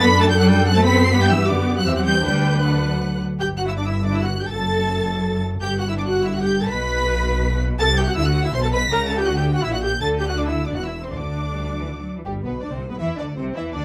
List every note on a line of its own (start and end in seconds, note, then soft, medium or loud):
0.02 1.11 F#2 loud
0.02 0.09 B3 loud
0.02 0.38 D4 loud
0.02 1.13 A4 medium
0.02 0.20 B5 loud
0.02 0.21 B6 loud
0.20 0.29 A3 medium
0.20 0.30 A5 loud
0.20 0.25 A6 loud
0.29 0.33 G3 loud
0.29 0.39 G5 loud
0.29 0.39 G6 loud
0.38 0.48 F#3 loud
0.38 0.75 D4 medium
0.38 0.48 F#5 loud
0.38 0.48 F#6 loud
0.48 0.66 G3 loud
0.48 0.66 G5 loud
0.48 0.67 G6 loud
0.66 0.75 F#3 loud
0.66 0.76 F#5 loud
0.66 0.76 F#6 loud
0.75 0.85 A3 loud
0.75 1.12 C4 loud
0.75 0.85 A5 loud
0.75 0.85 A6 loud
0.84 1.03 B3 loud
0.84 1.03 B5 loud
0.84 1.03 B6 loud
1.03 1.13 C4 loud
1.03 1.13 C6 loud
1.03 1.13 C7 loud
1.12 1.50 G2 loud
1.12 1.16 B3 loud
1.12 1.49 B3 loud
1.12 1.85 G4 medium
1.12 1.16 B5 loud
1.12 1.22 B6 loud
1.21 1.31 G3 loud
1.21 1.31 G5 loud
1.21 1.32 G6 loud
1.30 1.49 E3 medium
1.30 1.50 E5 loud
1.30 1.50 E6 loud
1.48 1.87 F#2 medium
1.48 1.77 D3 medium
1.48 1.87 B3 medium
1.48 1.78 D5 medium
1.48 1.77 D6 medium
1.77 1.86 F#3 medium
1.77 1.82 F#5 loud
1.77 1.87 F#6 loud
1.86 2.24 E2 medium
1.86 1.96 E3 medium
1.86 2.24 C4 medium
1.86 2.24 G4 medium
1.86 1.92 E5 medium
1.86 1.96 E6 medium
1.95 2.05 F#3 medium
1.95 2.06 F#5 medium
1.95 2.00 F#6 loud
2.05 2.13 G3 medium
2.05 2.25 G5 medium
2.05 2.23 G6 loud
2.24 3.20 D2 medium
2.24 2.62 G3 loud
2.24 3.20 D4 medium
2.24 3.20 B4 medium
2.24 2.63 G5 medium
2.24 2.62 G6 loud
2.62 3.19 F#3 medium
2.62 3.20 F#5 medium
2.62 3.21 F#6 medium
3.39 4.47 G1 medium
3.39 4.46 G2 medium
3.39 3.47 G4 medium
3.39 3.48 G5 medium
3.39 3.47 G6 loud
3.57 3.67 F#4 medium
3.57 3.68 F#5 medium
3.57 3.61 F#6 medium
3.67 3.76 E4 medium
3.67 3.77 E5 medium
3.67 3.72 E6 medium
3.77 3.86 D4 medium
3.77 3.81 D5 medium
3.77 3.86 D6 medium
3.86 3.94 E4 medium
3.86 4.04 E5 medium
3.86 4.04 E6 medium
4.04 4.13 D4 medium
4.04 4.14 D5 medium
4.04 4.13 D6 medium
4.13 4.23 E4 medium
4.13 4.23 E5 medium
4.13 4.23 E6 medium
4.23 4.41 F#4 medium
4.23 4.31 F#5 medium
4.23 4.41 F#6 medium
4.40 4.50 G4 medium
4.40 4.51 G5 medium
4.40 4.50 G6 medium
4.49 5.61 F#1 medium
4.49 5.61 F#2 medium
4.49 5.40 A4 medium
4.49 5.43 A5 medium
4.49 5.40 A6 loud
5.61 6.69 G1 medium
5.61 6.69 G2 medium
5.61 5.78 G4 medium
5.61 5.69 G5 medium
5.61 5.78 G6 loud
5.79 5.83 F#4 medium
5.79 5.84 F#5 medium
5.79 5.88 F#6 medium
5.88 5.97 E4 medium
5.88 5.98 E5 medium
5.88 5.92 E6 medium
5.97 6.07 D4 medium
5.97 6.03 D5 medium
5.97 6.02 D6 medium
6.07 6.25 F#4 medium
6.07 6.26 F#5 medium
6.07 6.25 F#6 medium
6.25 6.35 E4 medium
6.25 6.35 E5 medium
6.25 6.34 E6 medium
6.33 6.38 F#4 medium
6.33 6.44 F#5 medium
6.33 6.43 F#6 medium
6.42 6.61 G4 medium
6.42 6.62 G5 medium
6.42 6.61 G6 loud
6.61 6.65 A4 medium
6.61 6.71 A5 medium
6.61 6.65 A6 medium
6.69 7.77 B1 medium
6.69 7.77 B2 medium
6.69 7.59 B4 medium
6.69 7.61 B5 medium
6.69 7.59 B6 loud
7.79 8.14 C2 medium
7.79 8.14 C3 medium
7.79 7.87 A4 loud
7.79 7.87 A5 loud
7.79 7.97 A6 loud
7.97 8.02 G4 medium
7.97 8.02 G5 medium
7.97 8.07 G6 loud
8.07 8.11 F#4 medium
8.07 8.12 F#5 medium
8.07 8.17 F#6 loud
8.15 8.52 D2 medium
8.15 8.52 D3 medium
8.15 8.20 E4 medium
8.15 8.26 E5 medium
8.15 8.25 E6 loud
8.25 8.44 F#4 medium
8.25 8.44 F#5 loud
8.25 8.44 F#6 medium
8.43 8.48 E4 medium
8.43 8.53 E5 loud
8.43 8.52 E6 medium
8.53 8.89 B1 medium
8.53 8.89 B2 medium
8.53 8.57 C5 loud
8.53 8.62 C6 loud
8.53 8.57 C7 medium
8.62 8.67 A4 medium
8.62 8.72 A5 medium
8.62 8.66 A6 loud
8.72 8.80 B4 loud
8.72 8.80 B5 medium
8.72 8.90 B6 loud
8.90 9.26 C#2 medium
8.90 9.26 C#3 medium
8.90 8.99 A#4 loud
8.90 9.08 A#5 loud
8.90 9.08 A#6 loud
9.09 9.18 A4 medium
9.09 9.18 A5 medium
9.09 9.18 A6 loud
9.18 9.27 G4 medium
9.18 9.27 G5 medium
9.18 9.27 G6 medium
9.27 9.64 D2 medium
9.27 9.64 D3 medium
9.27 9.36 F#4 medium
9.27 9.36 F#5 medium
9.27 9.36 F#6 loud
9.36 9.54 G4 medium
9.36 9.55 G5 medium
9.36 9.44 G6 medium
9.54 9.63 F#4 medium
9.54 9.64 F#5 medium
9.54 9.64 F#6 medium
9.63 10.00 A#1 medium
9.63 10.00 A#2 medium
9.63 9.72 E4 medium
9.63 9.73 E5 medium
9.63 9.67 E6 medium
9.72 9.77 F#4 medium
9.72 9.83 F#5 medium
9.72 9.82 F#6 medium
9.82 9.90 G4 medium
9.82 9.90 G5 medium
9.82 10.00 G6 loud
10.00 10.71 D2 medium
10.00 10.71 D3 medium
10.00 10.19 A4 medium
10.00 10.08 A5 medium
10.00 10.08 A6 loud
10.19 10.24 G4 medium
10.19 10.24 G5 medium
10.19 10.28 G6 medium
10.28 10.33 F#4 medium
10.28 10.33 F#5 medium
10.28 10.37 F#6 medium
10.38 10.47 D4 medium
10.38 10.47 D5 medium
10.38 10.47 D6 medium
10.47 10.66 E4 medium
10.47 10.55 E5 medium
10.47 10.65 E6 medium
10.65 10.75 D4 medium
10.65 10.75 D5 medium
10.65 10.75 D6 medium
10.74 11.13 E1 medium
10.74 11.13 E2 medium
10.74 10.85 F#4 medium
10.74 10.84 F#5 medium
10.74 10.84 F#6 medium
10.84 11.03 E4 medium
10.84 11.03 E5 medium
10.84 11.03 E6 medium
11.04 11.13 C4 medium
11.04 11.13 C5 medium
11.04 11.13 C6 medium
11.12 12.08 D2 medium
11.12 11.47 D3 medium
11.12 12.08 D4 medium
11.12 12.08 D5 medium
11.12 12.08 D6 medium
11.51 11.69 G3 medium
11.69 11.79 F#3 medium
11.80 11.89 E3 medium
11.88 11.98 D3 soft
11.98 12.17 F#3 medium
12.18 12.27 E3 soft
12.26 12.44 G1 medium
12.26 12.44 G2 medium
12.26 12.44 G3 medium
12.26 12.33 G4 medium
12.44 12.63 B1 medium
12.44 12.63 B2 medium
12.44 12.52 B3 medium
12.44 12.63 B4 medium
12.44 12.52 B4 soft
12.63 12.73 D2 medium
12.63 12.72 D3 medium
12.63 12.72 D4 medium
12.63 12.72 D5 medium
12.63 12.73 D5 medium
12.71 12.91 C2 medium
12.71 12.91 C3 medium
12.71 12.79 C4 medium
12.71 12.90 C5 soft
12.71 12.91 C5 medium
12.89 13.00 B2 medium
12.89 12.93 B3 medium
12.89 13.00 B4 soft
12.89 13.01 B4 medium
12.98 13.07 E2 medium
12.98 13.07 E3 medium
12.98 13.18 E4 medium
12.98 13.18 E5 medium
12.98 13.07 E5 medium
13.17 13.37 D2 soft
13.17 13.37 D3 medium
13.17 13.25 D4 medium
13.17 13.37 D5 medium
13.17 13.27 D5 medium
13.35 13.56 C2 medium
13.35 13.55 C3 medium
13.35 13.56 C4 medium
13.35 13.43 C5 medium
13.35 13.45 C5 medium
13.53 13.74 E2 medium
13.53 13.74 E3 medium
13.53 13.74 E4 medium
13.53 13.73 E5 medium
13.53 13.64 E5 medium
13.72 13.81 D2 medium
13.72 13.81 D3 medium
13.72 13.81 D4 medium
13.72 13.85 D5 medium